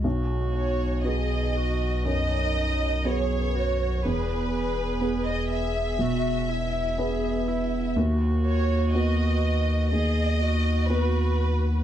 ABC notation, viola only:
X:1
M:4/4
L:1/8
Q:1/4=61
K:B
V:1 name="Viola"
F2 G F D2 G F | G G3 F E G E | F4 G F3 |]